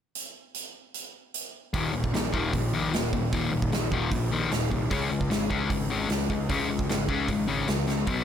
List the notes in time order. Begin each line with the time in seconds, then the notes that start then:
0.15 closed hi-hat
0.54 closed hi-hat
0.94 closed hi-hat
1.34 closed hi-hat
1.74 D#1 D#2 A#2 D#3, kick, open hi-hat
1.93 D#1 D#2 A#2
2.04 kick
2.12 A#1 D#2 A#2, snare, open hi-hat
2.33 D#1 D#2 A#2 D#3, kick
2.53 A#1 D#2 A#2, kick, open hi-hat
2.74 D#2 A#2 D#3
2.91 D#1 D#2 A#2, snare, open hi-hat
3.13 D#1 D#2 A#2, kick
3.33 D#1 D#2 A#2 D#3, kick, open hi-hat
3.51 D#1 D#2 A#2
3.62 kick
3.72 A#1 D#2 A#2, snare, open hi-hat
3.92 D#1 D#2 A#2 D#3, kick
4.11 A#1 D#2 A#2, kick, open hi-hat
4.32 D#2 A#2 D#3
4.51 D#1 D#2 A#2, snare, open hi-hat
4.71 C2 D#2 A#2, kick
4.90 C#2 C#3 G#3 C#4, kick, open hi-hat
5.11 C#2 C#3 G#3
5.21 kick
5.30 G#1 C#3 G#3, snare, open hi-hat
5.50 C#2 C#3 G#3 C#4, kick
5.70 G#1 C#3 G#3, kick, open hi-hat
5.90 C#3 G#3 C#4
6.09 C#2 C#3 G#3, snare, open hi-hat
6.29 C#2 C#3 G#3, kick
6.49 C#2 C#3 G#3 C#4, kick, open hi-hat
6.69 C#2 C#3 G#3
6.79 kick
6.89 G#1 C#3 G#3, snare, open hi-hat
7.09 C#2 C#3 G#3 C#4, kick
7.28 G#1 C#3 G#3, kick, open hi-hat
7.47 C#3 G#3 C#4
7.68 C#2 C#3 G#3, snare, open hi-hat
7.87 C#2 C#3 G#3, snare
8.07 B1 B2 F#3 B3, kick, open hi-hat